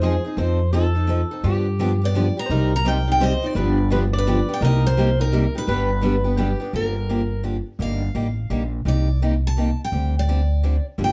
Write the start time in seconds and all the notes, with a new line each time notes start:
Already playing: F2 C5
0.01 F3 G#3 C4 D#4 F4 G#4 C5
0.25 C4 D#4 G#4
0.37 F2 F3 C4 D#4 A4 C5
0.73 F3 C4 D#4 A4
0.95 C4 D#4 A4
1.09 F3 C4 D#4 A4
1.31 C4 D#4 A4
1.44 G2 D3 F3 B3 D4 G4
1.80 D3 F3 B3 D4 G4
2.02 B3 D4 G4 D5
2.15 D3 F3 B3 D4 G4
2.37 B3 D4 G4 A#5
2.46 C2 C3 C5
2.50 G3 C4 D#4 G4 A#4 D5
2.76 A#5
2.85 C3 G3 C4 D#4 G4 D5 G5
3.07 C4 D#4 G4 D5
3.12 G5
3.20 C3 G3 C4 D#4 G4 C5 D5 D#5
3.42 C4 D#4 G4 D5
3.55 G1 D3 F3 B3 D4 G4 B4
3.90 D3 F3 B3 D4 G4 B4
4.13 B3 D4 G4 D5
4.18 B4
4.27 D3 F3 B3 D4 G4
4.49 B3 D4 G4
4.54 G5
4.61 C2 C3 G3 A#3 D#4 G4 A#4 D#5
4.86 C5
4.98 C3 G3 A#3 D#4 G4
5.19 A#3 D#4 G4 A#4
5.33 C3 G3 A#3 D#4 G4
5.55 A#3 D#4 G4 B4
5.67 G1 D3 G3 B3 D4 G4 B4
6.01 D3 G3 B3 D4 G4
6.24 B3 D4 G4
6.37 D3 G3 B3 D4 G4
6.60 B3 D4 G4
6.73 G1 D3 F3 A#3 D4 G4 A#4
7.09 D3 F3 A#3 D4 G4
7.43 D3 F3 A#3 D4 G4
7.79 G1 D3 G3 A#3 D#4 G4 F5
8.15 A1 D3 G3 A#3 D#4 G4
8.50 A#1 D3 G3 A#3 D#4 G4
8.85 C2 C3 G3 A#3 D#4 G4 D5
9.22 C3 G3 A#3 D#4 G4
9.47 A5
9.57 C3 G3 A#3 D#4 G4
9.84 G5
9.92 D2 D3 G3 C4 D4 G4
10.19 D5
10.29 D3 G3 C4 D4 G4
10.63 D3 G3 C4 D4 G4
10.98 G1 D3 F3 A#3 D4 G4
11.04 G5